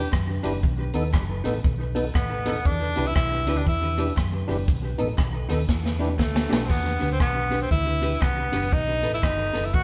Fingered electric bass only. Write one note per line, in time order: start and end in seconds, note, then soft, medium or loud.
0.13 0.39 F#2 medium
0.44 0.61 F#1 medium
0.64 0.90 B1 loud
0.94 1.15 D#2 medium
1.14 1.40 F#1 loud
1.45 1.62 A1 medium
1.65 2.08 B1 medium
2.15 2.58 A1 medium
2.66 2.92 E2 loud
2.97 3.14 C2 medium
3.16 3.47 B1 medium
3.47 3.64 D2 medium
3.67 4.10 E2 medium
4.18 4.44 F#2 medium
4.49 4.65 F#1 loud
4.68 4.95 B1 loud
5.00 5.16 A1 medium
5.18 5.45 B1 medium
5.50 5.67 D#2 medium
5.69 6.19 E2 loud
6.19 6.46 D2 medium
6.52 6.68 B1 medium
6.70 6.96 E2 loud
7.02 7.18 D2 medium
7.20 7.64 B1 medium
7.71 8.14 D2 medium
8.22 8.48 C2 medium
8.53 8.70 F#1 medium
8.73 9.04 B1 loud
9.04 9.21 A1 medium
9.23 9.50 G1 medium
9.55 9.71 F#1 medium
9.74 9.83 A1 medium